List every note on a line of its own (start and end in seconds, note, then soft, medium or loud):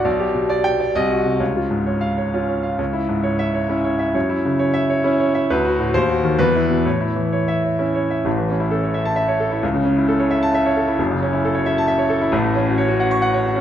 0.05 0.92 B1 medium
0.05 0.28 D5 medium
0.19 0.43 G4 medium
0.35 0.58 B2 medium
0.50 0.73 D5 medium
0.64 0.88 G5 medium
0.80 0.95 D5 medium
0.95 1.39 C2 medium
0.95 1.19 D#5 medium
1.10 1.34 F#4 medium
1.25 1.40 C3 medium
1.39 2.74 C#2 medium
1.39 1.64 C#5 soft
1.56 1.80 F4 medium
1.71 1.95 G#2 soft
1.86 2.11 C#5 medium
2.01 2.26 F5 medium
2.17 2.42 C#5 soft
2.34 2.70 C#4 medium
2.34 2.58 F4 medium
2.48 2.73 C#5 soft
2.63 2.78 F5 soft
2.78 4.10 C#2 medium
2.78 3.03 C#5 soft
2.93 3.17 E4 medium
3.09 3.33 G#2 soft
3.23 3.47 C#5 medium
3.39 3.63 E5 medium
3.54 3.78 C#5 medium
3.69 4.05 C#4 medium
3.69 3.93 E4 medium
3.84 4.09 C#5 medium
3.99 4.14 E5 medium
4.15 5.46 F#2 medium
4.15 4.39 C#5 medium
4.30 4.54 E4 medium
4.45 4.69 C#3 medium
4.59 4.83 C#5 medium
4.74 4.98 E5 medium
4.90 5.14 C#5 medium
5.04 5.41 C#4 medium
5.04 5.28 E4 medium
5.20 5.44 C#5 medium
5.34 5.49 E5 medium
5.50 5.93 D2 medium
5.50 5.74 B4 medium
5.65 5.88 F#4 medium
5.79 5.94 A2 medium
5.94 6.38 D#2 medium
5.94 6.18 C5 medium
6.09 6.33 F#4 medium
6.23 6.39 D#3 medium
6.39 6.84 E2 medium
6.39 6.64 B4 medium
6.55 6.80 E4 medium
6.70 6.86 B2 medium
6.85 8.21 A2 medium
6.85 7.10 C#5 medium
7.00 7.26 E4 medium
7.16 7.41 E3 soft
7.32 7.57 C#5 medium
7.48 7.73 E5 medium
7.64 7.88 C#5 soft
7.79 8.16 C#4 soft
7.79 8.04 E4 medium
7.95 8.19 C#5 soft
8.11 8.26 E5 medium
8.25 9.59 A1 medium
8.25 9.59 A2 medium
8.38 8.56 E3 medium
8.50 8.67 C#4 medium
8.60 8.78 E4 medium
8.71 8.89 A4 medium
8.83 9.01 C#5 medium
8.94 9.12 E5 medium
9.05 9.24 A5 medium
9.16 9.35 E5 medium
9.28 9.47 C#5 medium
9.40 9.58 A4 medium
9.51 9.63 E4 medium
9.63 10.95 C#2 medium
9.74 9.92 C#3 medium
9.85 10.03 C#4 medium
9.97 10.15 E4 medium
10.08 10.27 A4 medium
10.19 10.38 C#5 medium
10.31 10.49 E5 medium
10.43 10.60 A5 medium
10.54 10.72 E5 medium
10.66 10.83 C#5 medium
10.76 10.94 A4 medium
10.88 10.99 E4 medium
10.99 12.29 F#1 medium
10.99 12.30 F#2 medium
11.11 11.29 C#3 medium
11.22 11.40 C#4 medium
11.33 11.51 E4 medium
11.45 11.62 A4 medium
11.55 11.73 C#5 medium
11.66 11.84 E5 medium
11.78 11.96 A5 medium
11.88 12.06 E5 medium
11.98 12.17 C#5 medium
12.09 12.28 A4 medium
12.21 12.33 E4 medium
12.32 13.61 A1 medium
12.32 13.61 A2 medium
12.44 12.62 A3 medium
12.56 12.73 C#4 medium
12.66 12.84 F#4 medium
12.78 12.96 C#5 medium
12.89 13.07 F#4 medium
13.00 13.18 F#5 medium
13.11 13.29 C#6 medium
13.22 13.40 F#5 medium
13.34 13.51 C#5 medium
13.46 13.61 F#4 medium
13.56 13.61 C#4 medium